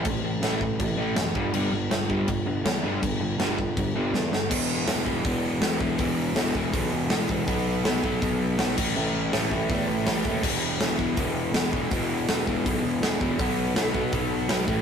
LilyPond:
<<
  \new Staff \with { instrumentName = "Overdriven electric guitar" } { \clef bass \time 4/4 \key b \mixolydian \tempo 4 = 162 <a, e>8 <a, e>8 <a, e a>8 <a, e>8 <a, e>8 <a, e a>8 <a, e>8 <g, d g>8 | <g, d g>8 <g, d>8 <g, d>8 <g, d g>8 <g, d>8 <g, d>8 <g, d>8 <g, d g>8 | <g, d>8 <g, d>8 <g, d g>8 <g, d>8 <g, d>8 <g, d g>8 <g, d>8 <g, d>8 | <e, b, e>4 <e, b, e>8 <e, b, e>8 <e, b, e>4 <e, b, e>8 <e, b, e>8 |
<e, b, e>4 <e, b, e>8 <e, b, e>8 <e, b, e>4 <e, b, e>8 <e, b, e>8 | <b, fis b>4 <b, fis b>8 <b, fis b>8 <b, fis b>4 <b, fis b>8 <a, e a>8 | <a, e a>4 <a, e a>8 <a, e a>8 <a, e a>4 <a, e a>8 <a, e a>8 | <e, b, e>4 <e, b, e>8 <e, b, e>8 <e, b, e>4 <e, b, e>8 <e, b, e>8 |
<e, b, e>4 <e, b, e>8 <e, b, e>8 <e, b, e>4 <e, b, e>8 <e, b, e>8 | <b, fis b>4 <b, fis b>8 <b, fis b>8 <b, fis b>4 <b, fis b>8 <a, e a>8 | }
  \new Staff \with { instrumentName = "Picked electric bass" } { \clef bass \time 4/4 \key b \mixolydian a,,8 a,,8 a,,4 a,,8 a,,8 fis,,8 g,,8 | g,,8 g,,8 g,,4 g,,8 g,,8 e,8 g,,8 | g,,8 g,,8 g,,4 g,,8 g,,8 e,8 g,,8 | e,,4 e,,4 e,,4 e,,4 |
e,,4 e,,8 e,,8 b,,8 e,,8 e,,8 e,,8 | b,,4 b,,4 b,,4 b,,8 a,,8 | a,,4 a,,8 a,,8 e,8 a,,8 a,,8 dis,8 | e,,4 e,,4 e,,4 e,,4 |
e,,4 e,,8 e,,8 b,,8 e,,8 e,,8 e,,8 | b,,4 b,,4 b,,4 b,,8 a,,8 | }
  \new DrumStaff \with { instrumentName = "Drums" } \drummode { \time 4/4 <cymc bd>4 <cymc sn>8 bd8 <cymc bd>4 <cymc sn>8 bd8 | cymc4 <cymc sn>8 bd8 <cymc bd>4 <cymc sn>4 | <cymc bd>4 <cymc sn>8 bd8 <cymc bd>4 sn8 sn8 | <cymc bd>4 <hho sn>8 bd8 <hho bd>4 <hho sn>8 bd8 |
<hho bd>4 <hho sn>8 bd8 <hho bd>4 <hho sn>8 bd8 | <hho bd>4 <hho sn>8 bd8 <hho bd>4 <hho sn>8 <cymc bd>8 | r4 <hho sn>8 bd8 <hho bd>4 <hho sn>8 bd8 | <cymc bd>4 <hho sn>8 bd8 <hho bd>4 <hho sn>8 bd8 |
<hho bd>4 <hho sn>8 bd8 <hho bd>4 <hho sn>8 bd8 | <hho bd>4 <hho sn>8 bd8 <hho bd>4 <hho sn>8 bd8 | }
>>